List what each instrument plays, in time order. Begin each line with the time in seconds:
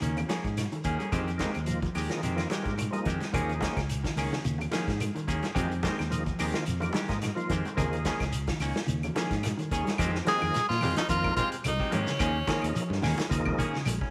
0.01 fingered electric bass D#2, clean electric guitar C#3 D#3 A#3 C#4, muted clean electric guitar stroke, closed hi-hat, high conga, shekere
0.17 closed hi-hat, low conga, claves, shekere
0.28 clean electric guitar F3 A#3 C#4 G#4, snare, closed hi-hat, high conga, shekere
0.44 fingered electric bass G#2, kick, closed hi-hat, shekere
0.57 snare, closed hi-hat, high conga, claves, shekere
0.71 clean electric guitar D#3, closed hi-hat, high conga, shekere
0.84 fingered electric bass D#2, clean electric guitar D#3 A#3 C#4 G#4, kick, closed hi-hat, shekere
0.99 clean electric guitar G3 A#3 C#4 G#4, closed hi-hat, high conga, shekere
1.12 fingered electric bass F2, clean electric guitar D#3 G#3 C4 G4, tonewheel organ F3 A#3 D#4 G#4, kick, closed hi-hat, high conga, low conga, claves, shekere
1.28 closed hi-hat, shekere
1.38 clean electric guitar D#3 G#3 C4 G4, tonewheel organ F3 A#3 D#4 G#4, kick, snare, closed hi-hat, high conga, shekere
1.54 fingered electric bass D#2, closed hi-hat, claves, shekere
1.65 tonewheel organ F3 A#3 D#4 F4, clean electric guitar F3, closed hi-hat, high conga
1.70 shekere
1.82 clean electric guitar F3, kick, closed hi-hat, shekere
1.95 fingered electric bass D#2, clean electric guitar D#3 G#3 G4, tonewheel organ D#4 G#4, open hi-hat, claves, shekere
2.09 clean electric guitar D#3, tonewheel organ F3 A#3 D#4 G#4, snare, closed hi-hat, low conga, shekere
2.23 fingered electric bass F2, clean electric guitar D#3 G#3 C4 G4, closed hi-hat, high conga, shekere
2.36 tonewheel organ F3 A#3 D#4 F4, snare, closed hi-hat, low conga, claves
2.40 shekere
2.50 clean electric guitar D#3 G3 G#3 G4, muted clean electric guitar stroke, snare, closed hi-hat, high conga, shekere
2.63 fingered electric bass G#2, tonewheel organ F3 A#3 D#4 G4, kick, closed hi-hat
2.69 shekere
2.78 closed hi-hat, high conga, claves, shekere
2.91 tonewheel organ F3 A#3 D#4 G#4, clean electric guitar G3, closed hi-hat, high conga
2.97 shekere
3.05 fingered electric bass F2, clean electric guitar D#3 G#3 C4 G4, kick, closed hi-hat
3.09 shekere
3.20 snare, closed hi-hat, high conga, shekere
3.33 fingered electric bass D#2, clean electric guitar D#3 A#3 C#4 G#4, tonewheel organ F3 A#3 D#4 G#4, muted clean electric guitar stroke, kick, closed hi-hat, high conga, low conga, claves, shekere
3.49 closed hi-hat, shekere
3.61 clean electric guitar D#3 A#3 C#4, muted clean electric guitar stroke, kick, snare, closed hi-hat, high conga
3.65 shekere
3.77 fingered electric bass C#2, kick, snare, closed hi-hat, claves, shekere
3.89 closed hi-hat, high conga, shekere
4.04 clean electric guitar D#3, kick, snare, closed hi-hat, shekere
4.16 fingered electric bass C#2, clean electric guitar D#3 A#3 C#4 G#4, open hi-hat, claves, shekere
4.32 clean electric guitar C#3, snare, low conga, shekere
4.45 fingered electric bass D#2, clean electric guitar C#3, closed hi-hat, high conga, shekere
4.58 closed hi-hat, low conga, claves, shekere
4.71 clean electric guitar D#3 F3 A#3 C#4 G#4, snare, closed hi-hat, high conga, shekere
4.88 fingered electric bass G#2, kick, snare, closed hi-hat, shekere
5.00 closed hi-hat, high conga, claves, shekere
5.15 clean electric guitar D#3, closed hi-hat, high conga, shekere
5.28 fingered electric bass D#2, clean electric guitar D#3 A#3 C#4 G#4, kick, closed hi-hat, shekere
5.43 clean electric guitar G3, snare, closed hi-hat, high conga, shekere
5.54 fingered electric bass F2, clean electric guitar D#3 G#3 C4 G4, tonewheel organ F3 A#3 D#4 G#4, kick, closed hi-hat, high conga, low conga, claves, shekere
5.71 closed hi-hat, shekere
5.83 clean electric guitar D#3 G#3 C4 G4, tonewheel organ F3 A#3 D#4 G#4, kick, snare, closed hi-hat, high conga, shekere
5.99 fingered electric bass D#2, snare, closed hi-hat, claves, shekere
6.10 clean electric guitar F3, tonewheel organ F3 A#3 D#4 G#4, closed hi-hat, high conga, shekere
6.25 clean electric guitar F3, kick, closed hi-hat, shekere
6.39 fingered electric bass D#2, clean electric guitar D#3 G#3 C4 G4, tonewheel organ D#4 G#4, open hi-hat, claves, shekere
6.53 clean electric guitar D#3, tonewheel organ F3 A#3 D#4 F4, snare, closed hi-hat, shekere
6.66 fingered electric bass F2, closed hi-hat, high conga, shekere
6.80 tonewheel organ F3 A#3 D#4 G4, closed hi-hat, low conga, claves
6.84 shekere
6.93 clean electric guitar D#3 G3 G#3 G4, snare, closed hi-hat, high conga, shekere
7.08 fingered electric bass G#2, tonewheel organ F3 A#3 D#4 G#4, kick, snare, closed hi-hat, shekere
7.22 snare, closed hi-hat, high conga, claves, shekere
7.35 tonewheel organ F3 A#3 D#4 F4, clean electric guitar F3, closed hi-hat
7.40 shekere
7.50 fingered electric bass F2, clean electric guitar D#3 G#3 C4 G4, kick, closed hi-hat, shekere
7.65 closed hi-hat, high conga, shekere
7.75 fingered electric bass D#2, clean electric guitar C#3 D#3 A#3 G#4, tonewheel organ F3 A#3 D#4 G#4, muted clean electric guitar stroke, kick, closed hi-hat, high conga, low conga, claves, shekere
7.93 closed hi-hat, shekere
8.05 clean electric guitar D#3 A#3 C#4 G#4, kick, snare, closed hi-hat, high conga, shekere
8.20 fingered electric bass C#2, kick, snare, closed hi-hat, claves, shekere
8.33 closed hi-hat, high conga, shekere
8.47 clean electric guitar D#3, kick, snare, closed hi-hat, shekere
8.60 fingered electric bass C#2, clean electric guitar D#3 A#3 C#4, muted clean electric guitar stroke, open hi-hat, claves, shekere
8.75 muted clean electric guitar stroke, snare, high conga, shekere
8.86 fingered electric bass D#2, clean electric guitar C#3, closed hi-hat, high conga, shekere
9.03 closed hi-hat, low conga, claves, shekere
9.15 clean electric guitar D#3 F3 A#3 C#4 G#4, snare, closed hi-hat, high conga, shekere
9.31 fingered electric bass G#2, kick, snare, closed hi-hat, shekere
9.43 snare, closed hi-hat, high conga, claves, shekere
9.57 clean electric guitar D#3, closed hi-hat, high conga
9.62 shekere
9.71 fingered electric bass D#2, clean electric guitar D#3 C#4 G#4, muted clean electric guitar stroke, kick, closed hi-hat, shekere
9.85 clean electric guitar G3, snare, closed hi-hat, high conga
9.89 shekere
9.98 fingered electric bass F2, clean electric guitar D#3 G#3 C4 G4, tonewheel organ F3 A#3 D#4 G#4, kick, closed hi-hat, low conga, claves, shekere
10.15 snare
10.25 clean electric guitar D#3 F3 G#3 C4 G4, tonewheel organ F3 A#3 D#4 G#4, tenor saxophone G#4, snare, closed hi-hat, high conga, shekere
10.42 fingered electric bass F2, clean electric guitar D#3, claves, shekere
10.54 muted fingered electric bass stroke, snare, closed hi-hat, high conga, shekere
10.69 fingered electric bass A#2, tenor saxophone F4, snare, high conga
10.81 fingered electric bass F2, clean electric guitar D#3 F3 G#3 C4 G4, open hi-hat, high conga, low conga, claves, shekere
10.96 tenor saxophone D#4, muted fingered electric bass stroke, snare, closed hi-hat, high conga, shekere
11.08 fingered electric bass F2, clean electric guitar D#3, tonewheel organ F3 A#3 D#4 A#4, tenor saxophone F4, kick, closed hi-hat, shekere
11.24 kick, high conga, claves
11.36 clean electric guitar G#3 C4 G4, tenor saxophone F4, muted clean electric guitar stroke, kick, closed hi-hat, shekere
11.52 closed hi-hat, shekere
11.64 fingered electric bass C2, tenor saxophone D#4, closed hi-hat, high conga, claves, shekere
11.80 clean electric guitar G#3 C4 G4, kick
11.90 fingered electric bass G#2, clean electric guitar D#3 F3 G#3 C4 G4, tonewheel organ F3 A#3 D#4 G#4, closed hi-hat, low conga, shekere
11.94 tenor saxophone C#4
12.07 clean electric guitar C#3, snare, high conga, shekere
12.19 fingered electric bass D#2, clean electric guitar D#3 A#3 C#4 G#4, tonewheel organ F3 A#3 D#4 G#4, kick, closed hi-hat, claves, shekere
12.47 clean electric guitar D#3 A#3 C#4 G#4, tonewheel organ F3 A#3 D#4 G#4, kick, snare, closed hi-hat, high conga, shekere
12.62 fingered electric bass D#2, closed hi-hat, claves, shekere
12.75 clean electric guitar F3, closed hi-hat, shekere
12.90 fingered electric bass G2, snare, high conga
13.02 fingered electric bass D#2, clean electric guitar D#3 A#3 C#4 G#4, snare, open hi-hat, high conga, low conga, claves, shekere
13.18 snare, closed hi-hat, high conga, shekere
13.30 fingered electric bass D#2, clean electric guitar C#3, tonewheel organ F3 A#3 D#4 G#4, kick, closed hi-hat, shekere
13.45 clean electric guitar C3, kick, high conga, claves
13.58 clean electric guitar D#3 A#3 C#4 G#4, kick, closed hi-hat, shekere
13.73 clean electric guitar C#3, snare, shekere
13.86 fingered electric bass A#1, closed hi-hat, high conga, claves, shekere
14.01 clean electric guitar C#4, muted clean electric guitar stroke, kick